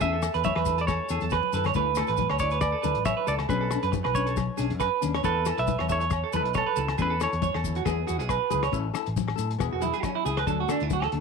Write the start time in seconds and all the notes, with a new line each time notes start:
0.01 E2 C#4 E4 G#4 A4 E5, kick, closed hi-hat, muted conga, maracas
0.13 A4
0.22 A4, muted nylon-string guitar stroke, cross-stick, closed hi-hat, muted conga, low agogo, maracas
0.34 E2 B4, closed hi-hat, maracas
0.44 C#5 E5, kick, closed hi-hat, high conga, maracas
0.55 E2 B4, cross-stick, low agogo
0.65 E4 A4, kick, closed hi-hat, maracas
0.78 A4 D5, closed hi-hat, maracas
0.87 A4 C#5, kick, cross-stick, closed hi-hat, muted conga, high conga, low agogo, maracas
1.09 E2 E4 G#4 A4, closed hi-hat, maracas
1.21 E2 A4, closed hi-hat, high conga, maracas
1.30 B4, kick, cross-stick, closed hi-hat, high conga, low agogo, maracas
1.43 high conga
1.53 F#2 E4 A4 B4, closed hi-hat, low conga, maracas
1.64 C#5, cross-stick, closed hi-hat, low conga, low agogo, maracas
1.74 D2 A3 E4 A4 B4, kick, closed hi-hat, maracas
1.95 A4, cross-stick, closed hi-hat, muted conga, low agogo, maracas
1.99 E4
2.07 A1 B4, closed hi-hat, maracas
2.17 kick, closed hi-hat, high conga, maracas
2.30 D2 C#5, cross-stick, low agogo
2.39 C#5 D5, muted nylon-string guitar stroke, kick, closed hi-hat, maracas
2.43 E4
2.50 B4, closed hi-hat, maracas
2.61 D5, kick, cross-stick, closed hi-hat, muted conga, low agogo, maracas
2.72 A4
2.82 D2 E4 A4 B4, closed hi-hat, high conga, maracas
2.95 A1, closed hi-hat
3.05 C#5 E5, kick, cross-stick, closed hi-hat, muted conga, high conga, low agogo, maracas
3.17 B4
3.27 C#2 E4 A4 D5, closed hi-hat, maracas
3.39 cross-stick, closed hi-hat, low agogo
3.49 B1 F#3 C#4 D4 G#4 B4, kick, closed hi-hat, maracas
3.61 A4
3.71 C#4 D4, cross-stick, closed hi-hat, muted conga, low agogo, maracas
3.83 F#2 B4, closed hi-hat, maracas
3.92 muted clean electric guitar stroke, kick, closed hi-hat, high conga, maracas
4.04 B1 B4, cross-stick, low agogo
4.15 C#4 D4 C#5, kick, closed hi-hat, maracas
4.26 A4, closed hi-hat, maracas
4.37 muted clean electric guitar stroke, kick, cross-stick, closed hi-hat, muted conga, high conga, low agogo, maracas
4.57 B1 C#4 D4 G#4, closed hi-hat, maracas
4.70 F#2, closed hi-hat
4.80 B4, kick, cross-stick, closed hi-hat, low agogo, maracas
5.01 D#2 C#4 D4, closed hi-hat, high conga, low conga, maracas
5.14 C#5, cross-stick, closed hi-hat, low agogo
5.23 E2 B3 E4 A4 B4, kick, closed hi-hat, maracas
5.45 E4 A4, cross-stick, closed hi-hat, low agogo, maracas
5.58 B1 B4 E5, closed hi-hat, maracas
5.67 kick, closed hi-hat, high conga, maracas
5.78 E2 C#5, cross-stick, low agogo
5.89 E4 A4 C#5 E5, kick, closed hi-hat, maracas
6.00 C#5, closed hi-hat, maracas
6.10 kick, cross-stick, closed hi-hat, muted conga, low agogo, maracas
6.24 A4
6.33 E2 E4 A4 B4, closed hi-hat, high conga, maracas
6.44 B1, closed hi-hat
6.54 A4 C#5, kick, cross-stick, closed hi-hat, muted conga, high conga, low agogo, maracas
6.66 B4
6.76 C#2 E4 A4, muted nylon-string guitar stroke, closed hi-hat, maracas
6.88 cross-stick, closed hi-hat, low agogo
6.98 E2 C#4 E4 G#4 A4 B4, kick, closed hi-hat, maracas
7.10 A4
7.20 E4 A4 C#5, cross-stick, closed hi-hat, muted conga, low agogo, maracas
7.33 E2, closed hi-hat, maracas
7.42 C#5, kick, closed hi-hat, high conga, maracas
7.54 E2 A4, cross-stick, low agogo
7.64 E4, muted nylon-string guitar stroke, kick, closed hi-hat, low conga, maracas
7.75 F#4, closed hi-hat, maracas
7.85 E2 B3 E4 G#4, kick, cross-stick, closed hi-hat, muted conga, high conga, low agogo, maracas
8.07 E2 E4 F#4 G#4, closed hi-hat, maracas
8.19 B1 G#4, closed hi-hat, maracas
8.29 B4, kick, cross-stick, closed hi-hat, muted conga, low agogo, maracas
8.50 C#2 E4 G#4 B4, closed hi-hat, high conga, low conga, maracas
8.63 C#5, cross-stick, closed hi-hat, low agogo, maracas
8.72 A1 C#4 E4 A4, kick, closed hi-hat, muted conga, maracas
8.93 E4 A4, cross-stick, closed hi-hat, low agogo, maracas
9.06 A1, closed hi-hat, maracas
9.17 kick, closed hi-hat, high conga, maracas
9.28 cross-stick, low agogo
9.36 A2 E4 A4, closed hi-hat, maracas
9.51 closed hi-hat
9.58 E1 B3 E4 G#4, kick, cross-stick, closed hi-hat, muted conga, low agogo, maracas
9.73 E1 F#4
9.80 E4 G#4, muted nylon-string guitar stroke, closed hi-hat, muted conga, high conga, maracas
9.94 G#4, closed hi-hat, maracas
10.03 C#4, kick, cross-stick, closed hi-hat, high conga, low agogo, maracas
10.15 E4
10.25 C#2 E4 G#4, closed hi-hat, muted conga, maracas
10.37 B4, cross-stick, closed hi-hat, low agogo
10.46 D2 F#3 A3 D4 A4, kick, closed hi-hat, maracas
10.60 F#4
10.68 A3 D4 A4, cross-stick, closed hi-hat, low conga, low agogo, maracas
10.80 D2 E4, closed hi-hat, maracas
10.90 F#4, kick, closed hi-hat, high conga, maracas
11.02 A4, cross-stick, low agogo
11.12 D2 A3 D4 A4, closed hi-hat